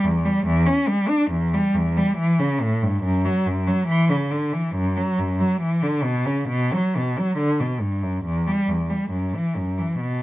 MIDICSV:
0, 0, Header, 1, 2, 480
1, 0, Start_track
1, 0, Tempo, 858369
1, 1693, Time_signature, 4, 2, 24, 8
1, 3136, Tempo, 881057
1, 5652, End_track
2, 0, Start_track
2, 0, Title_t, "Cello"
2, 0, Program_c, 0, 42
2, 25, Note_on_c, 0, 40, 59
2, 140, Note_on_c, 0, 55, 61
2, 142, Note_off_c, 0, 40, 0
2, 259, Note_off_c, 0, 55, 0
2, 260, Note_on_c, 0, 40, 77
2, 372, Note_on_c, 0, 61, 55
2, 376, Note_off_c, 0, 40, 0
2, 491, Note_on_c, 0, 55, 62
2, 493, Note_off_c, 0, 61, 0
2, 606, Note_on_c, 0, 62, 66
2, 612, Note_off_c, 0, 55, 0
2, 730, Note_off_c, 0, 62, 0
2, 732, Note_on_c, 0, 40, 61
2, 850, Note_off_c, 0, 40, 0
2, 860, Note_on_c, 0, 55, 63
2, 976, Note_on_c, 0, 40, 57
2, 977, Note_off_c, 0, 55, 0
2, 1095, Note_off_c, 0, 40, 0
2, 1100, Note_on_c, 0, 55, 59
2, 1216, Note_on_c, 0, 52, 68
2, 1217, Note_off_c, 0, 55, 0
2, 1333, Note_off_c, 0, 52, 0
2, 1338, Note_on_c, 0, 49, 58
2, 1455, Note_off_c, 0, 49, 0
2, 1462, Note_on_c, 0, 45, 62
2, 1577, Note_off_c, 0, 45, 0
2, 1578, Note_on_c, 0, 43, 60
2, 1695, Note_off_c, 0, 43, 0
2, 1696, Note_on_c, 0, 42, 65
2, 1812, Note_off_c, 0, 42, 0
2, 1821, Note_on_c, 0, 54, 64
2, 1937, Note_off_c, 0, 54, 0
2, 1937, Note_on_c, 0, 42, 58
2, 2055, Note_off_c, 0, 42, 0
2, 2055, Note_on_c, 0, 54, 60
2, 2169, Note_on_c, 0, 52, 74
2, 2174, Note_off_c, 0, 54, 0
2, 2289, Note_off_c, 0, 52, 0
2, 2290, Note_on_c, 0, 49, 58
2, 2412, Note_off_c, 0, 49, 0
2, 2412, Note_on_c, 0, 50, 51
2, 2531, Note_on_c, 0, 52, 56
2, 2533, Note_off_c, 0, 50, 0
2, 2653, Note_off_c, 0, 52, 0
2, 2656, Note_on_c, 0, 42, 61
2, 2773, Note_off_c, 0, 42, 0
2, 2780, Note_on_c, 0, 54, 59
2, 2898, Note_off_c, 0, 54, 0
2, 2900, Note_on_c, 0, 42, 49
2, 3018, Note_off_c, 0, 42, 0
2, 3021, Note_on_c, 0, 54, 55
2, 3138, Note_off_c, 0, 54, 0
2, 3138, Note_on_c, 0, 52, 60
2, 3253, Note_off_c, 0, 52, 0
2, 3254, Note_on_c, 0, 50, 53
2, 3369, Note_on_c, 0, 47, 57
2, 3374, Note_off_c, 0, 50, 0
2, 3491, Note_on_c, 0, 49, 53
2, 3494, Note_off_c, 0, 47, 0
2, 3616, Note_on_c, 0, 47, 64
2, 3619, Note_off_c, 0, 49, 0
2, 3741, Note_off_c, 0, 47, 0
2, 3749, Note_on_c, 0, 54, 62
2, 3869, Note_off_c, 0, 54, 0
2, 3877, Note_on_c, 0, 47, 53
2, 3992, Note_off_c, 0, 47, 0
2, 3996, Note_on_c, 0, 54, 60
2, 4099, Note_on_c, 0, 50, 62
2, 4110, Note_off_c, 0, 54, 0
2, 4218, Note_off_c, 0, 50, 0
2, 4222, Note_on_c, 0, 47, 47
2, 4335, Note_on_c, 0, 43, 49
2, 4341, Note_off_c, 0, 47, 0
2, 4455, Note_on_c, 0, 42, 50
2, 4457, Note_off_c, 0, 43, 0
2, 4576, Note_off_c, 0, 42, 0
2, 4576, Note_on_c, 0, 40, 60
2, 4693, Note_off_c, 0, 40, 0
2, 4697, Note_on_c, 0, 55, 56
2, 4813, Note_on_c, 0, 40, 48
2, 4814, Note_off_c, 0, 55, 0
2, 4926, Note_on_c, 0, 55, 45
2, 4931, Note_off_c, 0, 40, 0
2, 5043, Note_on_c, 0, 42, 55
2, 5047, Note_off_c, 0, 55, 0
2, 5163, Note_off_c, 0, 42, 0
2, 5176, Note_on_c, 0, 52, 47
2, 5293, Note_off_c, 0, 52, 0
2, 5296, Note_on_c, 0, 42, 50
2, 5410, Note_on_c, 0, 52, 48
2, 5414, Note_off_c, 0, 42, 0
2, 5531, Note_on_c, 0, 47, 54
2, 5533, Note_off_c, 0, 52, 0
2, 5652, Note_off_c, 0, 47, 0
2, 5652, End_track
0, 0, End_of_file